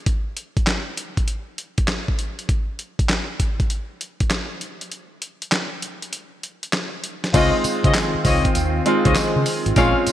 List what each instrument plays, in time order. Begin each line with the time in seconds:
0.06 kick, closed hi-hat
0.37 closed hi-hat
0.57 kick, closed hi-hat
0.67 snare, clap, closed hi-hat
0.97 closed hi-hat
1.17 kick, closed hi-hat
1.28 closed hi-hat
1.58 closed hi-hat
1.78 kick, closed hi-hat
1.88 snare, clap, closed hi-hat
2.08 kick
2.19 closed hi-hat
2.39 closed hi-hat
2.49 kick, closed hi-hat
2.79 closed hi-hat
2.99 kick, closed hi-hat
3.09 snare, clap, closed hi-hat
3.40 kick, closed hi-hat
3.60 kick, closed hi-hat
3.70 closed hi-hat
4.01 closed hi-hat
4.20 kick, closed hi-hat
4.30 snare, clap, closed hi-hat
4.61 closed hi-hat
4.81 closed hi-hat
4.92 closed hi-hat
5.22 closed hi-hat
5.42 closed hi-hat
5.52 snare, clap, closed hi-hat
5.82 closed hi-hat
6.02 closed hi-hat
6.13 closed hi-hat
6.43 closed hi-hat
6.63 closed hi-hat
6.73 snare, clap, closed hi-hat
7.04 closed hi-hat
7.24 snare, closed hi-hat
7.33 fingered electric bass C#2, analog synth pad D#3 C4 F4, grand piano G#3 C4 D#4 F4, horn section F4 C5 C#5 D#5, kick, closed hi-hat, crash, tambourine
7.64 muted fingered electric bass stroke, closed hi-hat, tambourine
7.84 fingered electric bass C#3, horn section F4 C5 C#5 D#5, kick, closed hi-hat
7.94 snare, clap, closed hi-hat, tambourine
8.15 muted fingered electric bass stroke
8.24 fingered electric bass C#2, horn section F4 C5 C#5 D#5, kick, open hi-hat, tambourine
8.45 kick, closed hi-hat
8.55 fingered electric bass D#2, closed hi-hat, tambourine
8.86 grand piano G#3 C4 D#4 F4, closed hi-hat
9.05 fingered electric bass C#2, horn section F4 C5 C#5 D#5, kick, closed hi-hat
9.15 snare, clap, closed hi-hat, tambourine
9.36 fingered electric bass C#3
9.46 open hi-hat, tambourine
9.66 fingered electric bass G#1, closed hi-hat
9.76 fingered electric bass A#1, analog synth pad C#3 A#3 G#4, grand piano G#3 C4 C#4 F4, horn section G#4 A#4 C#5 F5, kick, closed hi-hat, tambourine
10.07 muted fingered electric bass stroke, closed hi-hat, tambourine